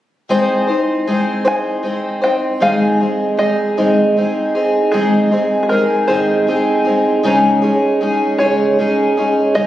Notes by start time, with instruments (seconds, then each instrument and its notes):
0.29 twelve-string acoustic guitar G#3 C4 D#4 C5
0.67 twelve-string acoustic guitar C4 D#4 C5
1.07 twelve-string acoustic guitar G#3 C4 D#4 C5
1.45 twelve-string acoustic guitar G#3 C4 D#4 C5, five-string banjo G#5
1.83 twelve-string acoustic guitar G#3 C4 D#4 C5
2.22 twelve-string acoustic guitar C4 D#4 C5, five-string banjo G5
2.60 twelve-string acoustic guitar G#2 D#3 G#3 C4 D#4 G#4, five-string banjo F5
3.00 twelve-string acoustic guitar G#3 C4 D#4 G#4
3.37 twelve-string acoustic guitar G#3 C4 D#4 G#4, five-string banjo D#5
3.77 twelve-string acoustic guitar G#2 D#3 G#3 C4 D#4 G#4
4.17 twelve-string acoustic guitar G#3 C4 D#4 G#4
4.55 twelve-string acoustic guitar G#3 C4 D#4 G#4
4.92 twelve-string acoustic guitar G#2 D#3 G#3 C4 D#4 G#4, five-string banjo G#4
5.31 twelve-string acoustic guitar G#3 C4 D#4 G#4
5.63 five-string banjo G#4
5.69 twelve-string acoustic guitar G#3 C4 D#4 G#4, five-string banjo A#4
6.08 twelve-string acoustic guitar G#2 D#3 G#3 C4 D#4 G#4, five-string banjo C5
6.47 twelve-string acoustic guitar G#3 C4 D#4 G#4
6.85 twelve-string acoustic guitar G#3 C4 D#4 G#4
7.23 twelve-string acoustic guitar G#2 C#3 G#3 C#4 D#4 G#4
7.62 twelve-string acoustic guitar G#3 C#4 D#4 G#4
8.01 twelve-string acoustic guitar G#3 C#4 D#4 G#4
8.38 twelve-string acoustic guitar G#2 C#3 G#3 C#4 D#4 G#4, five-string banjo C#5
8.79 twelve-string acoustic guitar G#3 C#4 D#4 G#4
9.17 twelve-string acoustic guitar G#3 C#4 D#4 G#4
9.55 twelve-string acoustic guitar G#2 C#3 G#3 C#4 D#4 G#4, five-string banjo D#5